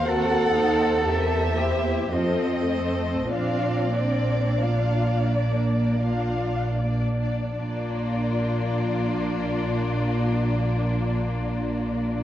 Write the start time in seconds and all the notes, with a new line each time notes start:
Already playing: D#2
0.04 C4 F#4 A4 A#4 F#5
0.54 A#3 D#4 C5
1.04 E2 C4 G4 A#4 E5
1.55 A#3 E4 G4 C5
2.11 F2 C4 F4 A4 D#5
2.70 A3 A4 C5
3.30 A#1 C4 D4 F4 D5 F5
3.93 A#3 D4 D5
4.58 A#3 D4 F4 F5
5.28 A#3 D4 D5
6.00 D4 F4 F5
6.80 A#3 D4 D5
7.56 A#1 A#3 D4 F4 D5